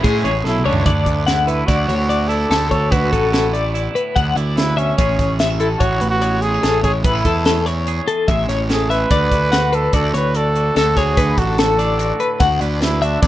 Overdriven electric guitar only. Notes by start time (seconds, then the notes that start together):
0.03 E3 A3 C#4 E4
0.64 E3 A3 C#4 E4